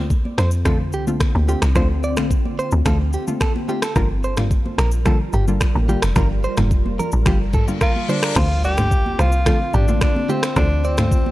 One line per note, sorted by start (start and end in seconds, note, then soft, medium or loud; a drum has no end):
0.00 0.21 D2 loud
0.00 0.12 D3 medium
0.00 3.92 D3 medium
0.00 0.12 A3 medium
0.00 0.12 C4 medium
0.00 3.92 C4 medium
0.00 0.12 F4 medium
0.00 3.92 F4 medium
0.10 kick medium
0.10 shaker medium
0.25 high conga medium
0.38 0.95 F2 medium
0.38 0.49 C5 medium
0.38 finger snap medium
0.38 cross-stick medium
0.38 shaker medium
0.51 shaker medium
0.65 0.81 D3 medium
0.65 0.81 A3 medium
0.65 0.81 C4 medium
0.65 0.81 F4 loud
0.65 0.77 A4 medium
0.65 finger snap medium
0.65 kick loud
0.65 cross-stick loud
0.65 low conga medium
0.65 shaker medium
0.93 1.24 C2 loud
0.93 1.04 G4 medium
0.93 shaker medium
1.07 1.45 D3 medium
1.07 1.45 A3 medium
1.07 1.45 C4 medium
1.07 1.45 F4 medium
1.07 high conga medium
1.07 shaker medium
1.20 finger snap medium
1.20 kick medium
1.20 cross-stick loud
1.20 shaker medium
1.35 1.56 D2 medium
1.35 high conga medium
1.48 1.73 D3 medium
1.48 1.74 A3 medium
1.48 1.74 C4 medium
1.48 1.74 F4 medium
1.48 1.59 G4 medium
1.48 shaker medium
1.62 1.77 C2 medium
1.62 finger snap medium
1.62 cross-stick medium
1.62 shaker medium
1.75 2.19 D2 loud
1.75 1.91 D3 medium
1.75 1.91 A3 medium
1.75 1.91 C4 medium
1.75 1.91 F4 loud
1.75 1.87 C5 loud
1.75 finger snap medium
1.75 kick loud
1.75 cross-stick medium
1.75 low conga medium
1.75 shaker medium
2.03 2.15 D5 medium
2.03 shaker soft
2.17 2.59 A1 medium
2.17 2.32 D3 medium
2.17 2.32 A3 medium
2.17 2.32 C4 medium
2.17 2.32 F4 medium
2.17 finger snap medium
2.17 cross-stick medium
2.17 high conga medium
2.17 shaker medium
2.31 kick medium
2.31 shaker medium
2.45 high conga medium
2.59 2.70 C5 medium
2.59 shaker medium
2.71 2.82 D2 medium
2.71 shaker medium
2.85 3.17 D2 loud
2.85 3.01 D3 medium
2.85 3.01 A3 medium
2.85 3.01 C4 medium
2.85 3.01 F4 loud
2.85 2.97 A4 medium
2.85 finger snap medium
2.85 kick loud
2.85 cross-stick medium
2.85 low conga medium
2.85 shaker medium
3.13 3.25 G4 medium
3.13 shaker medium
3.27 3.42 D3 medium
3.27 3.42 A3 medium
3.27 3.42 C4 medium
3.27 3.42 F4 medium
3.27 high conga medium
3.27 shaker medium
3.41 3.52 A4 medium
3.41 finger snap medium
3.41 kick medium
3.41 cross-stick medium
3.41 shaker medium
3.56 high conga medium
3.68 3.84 D3 medium
3.68 3.84 A3 medium
3.68 3.84 C4 medium
3.68 3.84 F4 medium
3.68 3.80 G4 medium
3.68 shaker medium
3.82 3.93 A4 medium
3.82 finger snap medium
3.82 cross-stick loud
3.82 shaker medium
3.96 4.62 G1 loud
3.96 4.11 D3 loud
3.96 4.11 G3 medium
3.96 8.32 G3 medium
3.96 4.11 A#3 medium
3.96 8.32 F4 medium
3.96 4.11 F4 loud
3.96 8.32 A#4 medium
3.96 4.07 A#4 medium
3.96 finger snap medium
3.96 kick loud
3.96 cross-stick medium
3.96 low conga medium
3.96 shaker medium
4.24 4.35 C5 medium
4.24 shaker soft
4.37 4.52 D3 medium
4.37 4.52 G3 medium
4.37 4.52 A#3 medium
4.37 4.52 F4 medium
4.37 finger snap medium
4.37 cross-stick medium
4.37 mid tom loud
4.37 high conga medium
4.37 shaker medium
4.51 kick medium
4.51 shaker medium
4.66 high conga medium
4.78 5.19 A#1 medium
4.78 4.90 A#4 medium
4.78 finger snap medium
4.78 cross-stick medium
4.78 shaker medium
4.92 shaker medium
5.06 5.21 D3 medium
5.06 5.21 G3 medium
5.06 5.22 A#3 medium
5.06 5.22 F4 loud
5.06 5.17 A4 medium
5.06 finger snap medium
5.06 kick loud
5.06 cross-stick medium
5.06 low conga medium
5.06 shaker medium
5.33 5.65 G1 medium
5.33 5.45 G4 medium
5.33 mid tom medium
5.33 shaker medium
5.48 5.85 D3 medium
5.48 5.85 G3 medium
5.48 5.85 A#3 medium
5.48 5.86 F4 medium
5.48 high conga medium
5.48 shaker medium
5.61 finger snap medium
5.61 kick medium
5.61 cross-stick loud
5.61 shaker medium
5.75 5.96 A1 medium
5.75 high conga medium
5.88 6.14 D3 medium
5.88 6.14 G3 medium
5.88 6.14 A#3 medium
5.88 6.14 F4 medium
5.88 6.00 G4 medium
5.88 shaker medium
6.02 6.13 F1 medium
6.02 finger snap medium
6.02 cross-stick loud
6.02 shaker medium
6.16 6.47 G1 loud
6.16 6.31 D3 medium
6.16 6.31 G3 medium
6.16 6.32 A#3 medium
6.16 6.32 F4 loud
6.16 6.27 A#4 loud
6.16 finger snap medium
6.16 kick loud
6.16 cross-stick medium
6.16 low conga medium
6.16 shaker medium
6.44 6.55 C5 medium
6.44 shaker soft
6.57 6.99 F1 medium
6.57 6.72 D3 medium
6.57 6.72 G3 medium
6.57 6.72 A#3 medium
6.57 6.72 F4 medium
6.57 finger snap medium
6.57 cross-stick medium
6.57 mid tom loud
6.57 high conga medium
6.57 shaker medium
6.71 kick medium
6.71 shaker medium
6.86 high conga medium
6.99 7.10 A#4 medium
6.99 low conga medium
6.99 shaker medium
7.12 7.27 A1 medium
7.12 shaker medium
7.26 7.57 G1 loud
7.26 7.41 D3 medium
7.26 7.41 G3 medium
7.26 7.42 A#3 medium
7.26 7.42 F4 loud
7.26 7.38 G4 medium
7.26 finger snap medium
7.26 kick loud
7.26 cross-stick loud
7.26 reverse cymbal medium
7.26 low conga medium
7.26 shaker medium
7.53 7.65 A4 medium
7.53 kick medium
7.53 mid tom medium
7.53 shaker medium
7.68 8.05 D3 medium
7.68 8.05 G3 medium
7.68 8.06 A#3 medium
7.68 8.06 F4 medium
7.68 high conga medium
7.68 shaker medium
7.81 8.11 F4 loud
7.81 7.93 A#4 medium
7.81 finger snap medium
7.81 kick loud
7.81 cross-stick medium
7.81 shaker medium
7.96 high conga medium
8.08 8.34 D3 medium
8.08 8.34 G3 medium
8.08 8.34 A#3 medium
8.08 8.38 D4 medium
8.08 8.34 F4 medium
8.08 8.20 C5 medium
8.08 shaker medium
8.23 8.34 A#4 medium
8.23 finger snap medium
8.23 cross-stick loud
8.23 shaker medium
8.36 9.15 D2 loud
8.36 8.52 D3 loud
8.36 11.31 D3 medium
8.36 8.52 A3 medium
8.36 11.31 C4 medium
8.36 8.52 C4 medium
8.36 11.31 F4 medium
8.36 8.52 F4 loud
8.36 8.64 F4 loud
8.36 8.48 C5 loud
8.36 finger snap medium
8.36 kick loud
8.36 cross-stick loud
8.36 crash loud
8.36 impact medium
8.36 low conga medium
8.36 shaker medium
8.64 9.15 G4 loud
8.64 8.75 D5 medium
8.64 shaker soft
8.77 8.92 D3 medium
8.77 8.92 A3 medium
8.77 8.92 C4 medium
8.77 8.93 F4 medium
8.77 finger snap medium
8.77 cross-stick medium
8.77 mid tom loud
8.77 high conga medium
8.77 shaker medium
8.91 kick medium
8.91 shaker medium
9.06 high conga medium
9.19 9.50 C2 medium
9.19 9.76 F4 loud
9.19 9.30 C5 medium
9.19 finger snap medium
9.19 cross-stick medium
9.19 high conga medium
9.19 shaker medium
9.32 shaker medium
9.46 9.62 D3 loud
9.46 9.62 A3 medium
9.46 9.62 C4 medium
9.46 9.62 F4 loud
9.46 9.58 A4 medium
9.46 finger snap medium
9.46 kick loud
9.46 cross-stick loud
9.46 low conga medium
9.46 shaker medium
9.74 10.05 A1 medium
9.74 10.01 D4 medium
9.74 9.85 G4 medium
9.74 mid tom medium
9.74 shaker medium
9.88 10.26 D3 medium
9.88 10.26 A3 medium
9.88 10.26 C4 medium
9.88 10.26 F4 medium
9.88 high conga medium
9.88 shaker medium
10.01 10.31 D4 medium
10.01 finger snap medium
10.01 kick loud
10.01 cross-stick loud
10.01 shaker medium
10.16 high conga medium
10.29 10.54 D3 medium
10.29 10.54 A3 medium
10.29 10.54 C4 medium
10.29 10.57 C4 medium
10.29 10.55 F4 medium
10.29 10.40 G4 medium
10.29 shaker medium
10.43 finger snap medium
10.43 cross-stick loud
10.43 shaker medium
10.56 11.31 D2 loud
10.56 10.72 D3 loud
10.56 10.72 A3 medium
10.56 10.72 C4 medium
10.56 10.86 D4 loud
10.56 10.72 F4 loud
10.56 10.68 C5 loud
10.56 finger snap medium
10.56 kick loud
10.56 cross-stick loud
10.56 low conga medium
10.56 shaker medium
10.84 11.31 C4 medium
10.84 10.95 D5 medium
10.84 shaker soft
10.98 11.13 D3 medium
10.98 11.13 A3 medium
10.98 11.13 C4 medium
10.98 11.13 F4 medium
10.98 finger snap medium
10.98 cross-stick medium
10.98 mid tom loud
10.98 high conga medium
10.98 shaker medium
11.11 kick medium
11.11 shaker medium
11.26 high conga medium